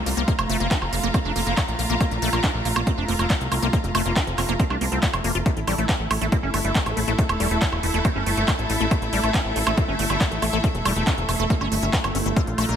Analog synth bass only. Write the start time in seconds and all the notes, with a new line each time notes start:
0.06 C2
0.17 C2
0.39 F1
0.49 F1
0.60 F1
0.82 F1
0.93 F1
1.03 F1
1.25 F1
1.36 F1
1.47 F1
1.68 A#1
1.79 A#1
1.90 A#1
2.11 A#1
2.22 A#1
2.33 A#1
2.54 A#1
2.65 A#1
2.76 A#1
2.98 F1
3.08 F1
3.19 F1
3.41 C2
3.52 C2
3.62 C2
3.84 F1
3.95 F1
4.06 F1
4.27 F1
4.38 F1
4.49 F1
4.70 C2
4.81 C2
4.92 C2
5.13 F1
5.24 F1
5.35 F1
5.57 A1
5.67 A1
5.78 A1
6.00 A1
6.11 A1
6.21 A1
6.43 G1
6.54 G1
6.65 G1
6.86 A1
6.97 A1
7.08 A1
7.29 E1
7.40 E1
7.51 E1
7.72 E1
7.83 E1
7.94 E1
8.16 G1
8.26 G1
8.37 G1
8.59 A1
8.70 A1
8.80 A1
9.02 A1
9.13 A1
9.24 A1
9.45 A1
9.56 A1
9.67 A1
9.88 G1
9.99 G1
10.10 G1
10.31 A1
10.42 A1
10.53 A1
10.75 E1
10.85 E1
10.96 E1
11.18 E1
11.29 E1
11.39 E1
11.61 G1
11.72 G1
11.83 G1
12.04 G1
12.15 G1
12.26 G1
12.47 A#1
12.58 A#1
12.69 A#1